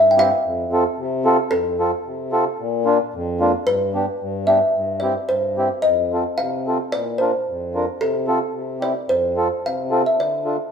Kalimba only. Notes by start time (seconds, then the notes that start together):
0.11 G5
0.19 F5
1.51 A4
3.67 B4
4.47 E5
5.00 D5
5.29 C5
5.82 D#5
6.38 F5
6.92 D5
7.18 C5
8.01 A4
8.82 D5
9.09 C5
9.66 F5
10.06 E5
10.20 D5